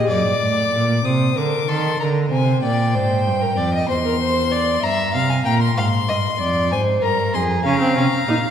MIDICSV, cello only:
0, 0, Header, 1, 2, 480
1, 0, Start_track
1, 0, Tempo, 630252
1, 69, Time_signature, 12, 3, 24, 8
1, 6477, End_track
2, 0, Start_track
2, 0, Title_t, "Cello"
2, 0, Program_c, 0, 42
2, 70, Note_on_c, 0, 42, 66
2, 183, Note_off_c, 0, 42, 0
2, 193, Note_on_c, 0, 43, 58
2, 241, Note_off_c, 0, 43, 0
2, 312, Note_on_c, 0, 45, 63
2, 550, Note_off_c, 0, 45, 0
2, 556, Note_on_c, 0, 46, 70
2, 793, Note_off_c, 0, 46, 0
2, 796, Note_on_c, 0, 48, 68
2, 1031, Note_off_c, 0, 48, 0
2, 1036, Note_on_c, 0, 50, 64
2, 1275, Note_off_c, 0, 50, 0
2, 1284, Note_on_c, 0, 51, 73
2, 1519, Note_off_c, 0, 51, 0
2, 1523, Note_on_c, 0, 50, 73
2, 1758, Note_off_c, 0, 50, 0
2, 1766, Note_on_c, 0, 48, 72
2, 2000, Note_off_c, 0, 48, 0
2, 2006, Note_on_c, 0, 46, 67
2, 2244, Note_on_c, 0, 44, 77
2, 2255, Note_off_c, 0, 46, 0
2, 2484, Note_on_c, 0, 43, 71
2, 2495, Note_off_c, 0, 44, 0
2, 2719, Note_off_c, 0, 43, 0
2, 2723, Note_on_c, 0, 41, 68
2, 2956, Note_off_c, 0, 41, 0
2, 2962, Note_on_c, 0, 40, 66
2, 3666, Note_off_c, 0, 40, 0
2, 3681, Note_on_c, 0, 43, 65
2, 3917, Note_on_c, 0, 48, 72
2, 3928, Note_off_c, 0, 43, 0
2, 4152, Note_off_c, 0, 48, 0
2, 4156, Note_on_c, 0, 46, 73
2, 4389, Note_off_c, 0, 46, 0
2, 4393, Note_on_c, 0, 44, 67
2, 4636, Note_on_c, 0, 43, 69
2, 4647, Note_off_c, 0, 44, 0
2, 4869, Note_off_c, 0, 43, 0
2, 4873, Note_on_c, 0, 41, 67
2, 5115, Note_on_c, 0, 44, 73
2, 5127, Note_off_c, 0, 41, 0
2, 5352, Note_off_c, 0, 44, 0
2, 5357, Note_on_c, 0, 43, 68
2, 5596, Note_on_c, 0, 41, 74
2, 5607, Note_off_c, 0, 43, 0
2, 5828, Note_off_c, 0, 41, 0
2, 5833, Note_on_c, 0, 49, 71
2, 6064, Note_off_c, 0, 49, 0
2, 6069, Note_on_c, 0, 48, 67
2, 6130, Note_off_c, 0, 48, 0
2, 6306, Note_on_c, 0, 46, 63
2, 6367, Note_off_c, 0, 46, 0
2, 6477, End_track
0, 0, End_of_file